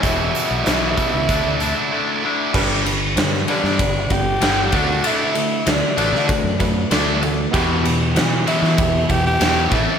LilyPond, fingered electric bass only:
\new Staff \with { instrumentName = "Fingered electric bass" } { \clef bass \time 4/4 \key e \minor \tempo 4 = 96 e,,8 r16 b,,16 b,,8 r16 cis,16 d,16 d,8 r4 r16 | g,,4 g,8 r16 g,16 g,,8 g,,8 g,,8 d,8 | r4 d,16 r16 a,,16 d16 r16 fis,8. d,4 | e,4 e8 r16 e16 e,8 e,8 e,8 a,,16 r16 | }